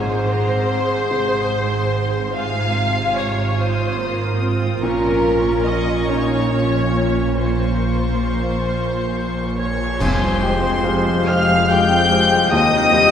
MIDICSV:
0, 0, Header, 1, 13, 480
1, 0, Start_track
1, 0, Key_signature, -4, "minor"
1, 0, Tempo, 826446
1, 1374, Time_signature, 6, 3, 24, 8
1, 3287, Tempo, 869565
1, 5687, Tempo, 835655
1, 7469, End_track
2, 0, Start_track
2, 0, Title_t, "Violin section"
2, 0, Program_c, 0, 48
2, 0, Note_on_c, 0, 80, 61
2, 161, Note_on_c, 0, 82, 59
2, 165, Note_off_c, 0, 80, 0
2, 393, Note_off_c, 0, 82, 0
2, 400, Note_on_c, 0, 84, 61
2, 633, Note_off_c, 0, 84, 0
2, 640, Note_on_c, 0, 84, 57
2, 1361, Note_off_c, 0, 84, 0
2, 1367, Note_on_c, 0, 80, 67
2, 2084, Note_off_c, 0, 80, 0
2, 2091, Note_on_c, 0, 87, 60
2, 2788, Note_off_c, 0, 87, 0
2, 2801, Note_on_c, 0, 85, 66
2, 4234, Note_off_c, 0, 85, 0
2, 4240, Note_on_c, 0, 85, 57
2, 5428, Note_off_c, 0, 85, 0
2, 5442, Note_on_c, 0, 85, 76
2, 5666, Note_off_c, 0, 85, 0
2, 5679, Note_on_c, 0, 84, 80
2, 6414, Note_off_c, 0, 84, 0
2, 6418, Note_on_c, 0, 89, 90
2, 6659, Note_off_c, 0, 89, 0
2, 6661, Note_on_c, 0, 91, 104
2, 7131, Note_on_c, 0, 87, 122
2, 7133, Note_off_c, 0, 91, 0
2, 7469, Note_off_c, 0, 87, 0
2, 7469, End_track
3, 0, Start_track
3, 0, Title_t, "Clarinet"
3, 0, Program_c, 1, 71
3, 5686, Note_on_c, 1, 80, 75
3, 5926, Note_on_c, 1, 79, 75
3, 5934, Note_off_c, 1, 80, 0
3, 6168, Note_on_c, 1, 77, 86
3, 6176, Note_off_c, 1, 79, 0
3, 7119, Note_on_c, 1, 79, 94
3, 7128, Note_off_c, 1, 77, 0
3, 7469, Note_off_c, 1, 79, 0
3, 7469, End_track
4, 0, Start_track
4, 0, Title_t, "Flute"
4, 0, Program_c, 2, 73
4, 5443, Note_on_c, 2, 73, 58
4, 5696, Note_on_c, 2, 72, 65
4, 5704, Note_off_c, 2, 73, 0
4, 6412, Note_on_c, 2, 77, 81
4, 6420, Note_off_c, 2, 72, 0
4, 6654, Note_on_c, 2, 79, 90
4, 6663, Note_off_c, 2, 77, 0
4, 7129, Note_off_c, 2, 79, 0
4, 7137, Note_on_c, 2, 75, 99
4, 7469, Note_off_c, 2, 75, 0
4, 7469, End_track
5, 0, Start_track
5, 0, Title_t, "Oboe"
5, 0, Program_c, 3, 68
5, 5454, Note_on_c, 3, 73, 56
5, 5673, Note_off_c, 3, 73, 0
5, 5693, Note_on_c, 3, 72, 68
5, 6417, Note_on_c, 3, 77, 85
5, 6425, Note_off_c, 3, 72, 0
5, 6648, Note_on_c, 3, 79, 91
5, 6657, Note_off_c, 3, 77, 0
5, 7119, Note_off_c, 3, 79, 0
5, 7122, Note_on_c, 3, 75, 98
5, 7469, Note_off_c, 3, 75, 0
5, 7469, End_track
6, 0, Start_track
6, 0, Title_t, "Violin section"
6, 0, Program_c, 4, 48
6, 0, Note_on_c, 4, 72, 88
6, 1369, Note_on_c, 4, 77, 99
6, 1372, Note_off_c, 4, 72, 0
6, 1839, Note_off_c, 4, 77, 0
6, 1849, Note_on_c, 4, 73, 83
6, 2087, Note_off_c, 4, 73, 0
6, 2091, Note_on_c, 4, 72, 77
6, 2564, Note_off_c, 4, 72, 0
6, 2803, Note_on_c, 4, 70, 92
6, 3265, Note_off_c, 4, 70, 0
6, 3283, Note_on_c, 4, 75, 86
6, 3520, Note_off_c, 4, 75, 0
6, 3530, Note_on_c, 4, 73, 78
6, 4247, Note_off_c, 4, 73, 0
6, 4248, Note_on_c, 4, 72, 72
6, 5432, Note_off_c, 4, 72, 0
6, 5459, Note_on_c, 4, 73, 59
6, 5675, Note_off_c, 4, 73, 0
6, 5692, Note_on_c, 4, 72, 66
6, 6420, Note_off_c, 4, 72, 0
6, 6420, Note_on_c, 4, 77, 81
6, 6660, Note_off_c, 4, 77, 0
6, 6660, Note_on_c, 4, 79, 86
6, 7131, Note_on_c, 4, 75, 102
6, 7132, Note_off_c, 4, 79, 0
6, 7469, Note_off_c, 4, 75, 0
6, 7469, End_track
7, 0, Start_track
7, 0, Title_t, "Felt piano"
7, 0, Program_c, 5, 0
7, 0, Note_on_c, 5, 44, 60
7, 39, Control_c, 5, 64, 127
7, 643, Note_on_c, 5, 48, 52
7, 1354, Note_off_c, 5, 44, 0
7, 1385, Control_c, 5, 64, 0
7, 1480, Control_c, 5, 64, 127
7, 2804, Note_off_c, 5, 48, 0
7, 2806, Note_on_c, 5, 46, 67
7, 2811, Control_c, 5, 64, 0
7, 2907, Control_c, 5, 64, 127
7, 3530, Note_on_c, 5, 61, 52
7, 4223, Note_off_c, 5, 46, 0
7, 4253, Control_c, 5, 64, 0
7, 4344, Control_c, 5, 64, 127
7, 5690, Note_on_c, 5, 41, 62
7, 5692, Note_off_c, 5, 61, 0
7, 5698, Control_c, 5, 64, 0
7, 5795, Control_c, 5, 64, 127
7, 5924, Note_off_c, 5, 41, 0
7, 5925, Note_on_c, 5, 56, 47
7, 5929, Note_on_c, 5, 67, 45
7, 5929, Note_on_c, 5, 72, 45
7, 6149, Note_off_c, 5, 56, 0
7, 6151, Note_off_c, 5, 67, 0
7, 6151, Note_off_c, 5, 72, 0
7, 6168, Note_on_c, 5, 56, 44
7, 6172, Note_on_c, 5, 72, 49
7, 6174, Note_on_c, 5, 67, 46
7, 6392, Note_off_c, 5, 56, 0
7, 6394, Note_off_c, 5, 72, 0
7, 6395, Note_off_c, 5, 67, 0
7, 6418, Note_on_c, 5, 56, 54
7, 6420, Note_on_c, 5, 72, 58
7, 6421, Note_on_c, 5, 67, 57
7, 6636, Note_off_c, 5, 56, 0
7, 6637, Note_off_c, 5, 67, 0
7, 6637, Note_off_c, 5, 72, 0
7, 6664, Note_on_c, 5, 56, 52
7, 6665, Note_on_c, 5, 67, 56
7, 6667, Note_on_c, 5, 72, 55
7, 6876, Note_off_c, 5, 56, 0
7, 6876, Note_off_c, 5, 67, 0
7, 6877, Note_off_c, 5, 72, 0
7, 6894, Note_on_c, 5, 56, 47
7, 6895, Note_on_c, 5, 67, 49
7, 6898, Note_on_c, 5, 72, 55
7, 7108, Note_off_c, 5, 56, 0
7, 7108, Note_off_c, 5, 67, 0
7, 7110, Note_off_c, 5, 72, 0
7, 7128, Note_on_c, 5, 39, 73
7, 7143, Control_c, 5, 64, 0
7, 7235, Control_c, 5, 64, 127
7, 7359, Note_off_c, 5, 39, 0
7, 7369, Note_on_c, 5, 55, 51
7, 7371, Note_on_c, 5, 67, 54
7, 7372, Note_on_c, 5, 72, 62
7, 7469, Note_off_c, 5, 55, 0
7, 7469, Note_off_c, 5, 67, 0
7, 7469, Note_off_c, 5, 72, 0
7, 7469, End_track
8, 0, Start_track
8, 0, Title_t, "Viola section"
8, 0, Program_c, 6, 48
8, 0, Note_on_c, 6, 60, 59
8, 0, Note_on_c, 6, 68, 63
8, 627, Note_off_c, 6, 60, 0
8, 634, Note_on_c, 6, 60, 60
8, 1349, Note_off_c, 6, 68, 0
8, 1358, Note_off_c, 6, 60, 0
8, 1370, Note_on_c, 6, 65, 69
8, 1372, Note_on_c, 6, 48, 66
8, 2072, Note_off_c, 6, 48, 0
8, 2092, Note_on_c, 6, 60, 62
8, 2322, Note_off_c, 6, 60, 0
8, 2325, Note_on_c, 6, 58, 73
8, 2559, Note_on_c, 6, 60, 69
8, 2562, Note_off_c, 6, 58, 0
8, 2800, Note_off_c, 6, 60, 0
8, 2801, Note_on_c, 6, 61, 70
8, 3521, Note_on_c, 6, 63, 60
8, 3522, Note_off_c, 6, 61, 0
8, 3759, Note_off_c, 6, 63, 0
8, 3762, Note_on_c, 6, 61, 65
8, 3999, Note_off_c, 6, 61, 0
8, 4005, Note_on_c, 6, 61, 58
8, 4219, Note_off_c, 6, 65, 0
8, 4241, Note_off_c, 6, 61, 0
8, 4242, Note_on_c, 6, 58, 59
8, 4244, Note_on_c, 6, 65, 55
8, 5553, Note_off_c, 6, 65, 0
8, 5574, Note_off_c, 6, 58, 0
8, 5687, Note_on_c, 6, 53, 63
8, 5687, Note_on_c, 6, 55, 63
8, 5800, Note_off_c, 6, 53, 0
8, 5801, Note_off_c, 6, 55, 0
8, 5808, Note_on_c, 6, 55, 58
8, 5930, Note_off_c, 6, 55, 0
8, 5931, Note_on_c, 6, 56, 60
8, 6049, Note_on_c, 6, 60, 60
8, 6053, Note_off_c, 6, 56, 0
8, 6170, Note_on_c, 6, 56, 62
8, 6173, Note_off_c, 6, 60, 0
8, 6288, Note_on_c, 6, 55, 58
8, 6294, Note_off_c, 6, 56, 0
8, 6414, Note_off_c, 6, 55, 0
8, 6416, Note_on_c, 6, 53, 59
8, 6538, Note_off_c, 6, 53, 0
8, 6538, Note_on_c, 6, 55, 66
8, 6656, Note_on_c, 6, 56, 64
8, 6658, Note_off_c, 6, 55, 0
8, 6776, Note_off_c, 6, 56, 0
8, 6777, Note_on_c, 6, 60, 65
8, 6895, Note_off_c, 6, 60, 0
8, 6898, Note_on_c, 6, 56, 67
8, 7015, Note_off_c, 6, 56, 0
8, 7017, Note_on_c, 6, 55, 68
8, 7133, Note_off_c, 6, 55, 0
8, 7134, Note_on_c, 6, 48, 79
8, 7243, Note_off_c, 6, 48, 0
8, 7250, Note_on_c, 6, 51, 69
8, 7368, Note_off_c, 6, 51, 0
8, 7372, Note_on_c, 6, 55, 67
8, 7469, Note_off_c, 6, 55, 0
8, 7469, End_track
9, 0, Start_track
9, 0, Title_t, "French horn section"
9, 0, Program_c, 7, 60
9, 5694, Note_on_c, 7, 65, 70
9, 5696, Note_on_c, 7, 53, 66
9, 7113, Note_off_c, 7, 53, 0
9, 7131, Note_on_c, 7, 48, 78
9, 7469, Note_off_c, 7, 48, 0
9, 7469, Note_off_c, 7, 65, 0
9, 7469, End_track
10, 0, Start_track
10, 0, Title_t, "Cello section"
10, 0, Program_c, 8, 48
10, 0, Note_on_c, 8, 44, 65
10, 2776, Note_off_c, 8, 44, 0
10, 2801, Note_on_c, 8, 46, 70
10, 5553, Note_off_c, 8, 46, 0
10, 5687, Note_on_c, 8, 41, 68
10, 7108, Note_off_c, 8, 41, 0
10, 7126, Note_on_c, 8, 39, 79
10, 7469, Note_off_c, 8, 39, 0
10, 7469, End_track
11, 0, Start_track
11, 0, Title_t, "Timpani"
11, 0, Program_c, 10, 47
11, 5685, Note_on_c, 10, 41, 89
11, 6394, Note_off_c, 10, 41, 0
11, 7469, End_track
12, 0, Start_track
12, 0, Title_t, "Double bass section"
12, 0, Program_c, 11, 48
12, 0, Note_on_c, 11, 32, 68
12, 2781, Note_off_c, 11, 32, 0
12, 2806, Note_on_c, 11, 34, 73
12, 5555, Note_off_c, 11, 34, 0
12, 5691, Note_on_c, 11, 29, 70
12, 7110, Note_off_c, 11, 29, 0
12, 7133, Note_on_c, 11, 39, 82
12, 7469, Note_off_c, 11, 39, 0
12, 7469, End_track
13, 0, Start_track
13, 0, Title_t, "Drums"
13, 5686, Note_on_c, 9, 35, 69
13, 5686, Note_on_c, 9, 49, 69
13, 5743, Note_off_c, 9, 35, 0
13, 5743, Note_off_c, 9, 49, 0
13, 7469, End_track
0, 0, End_of_file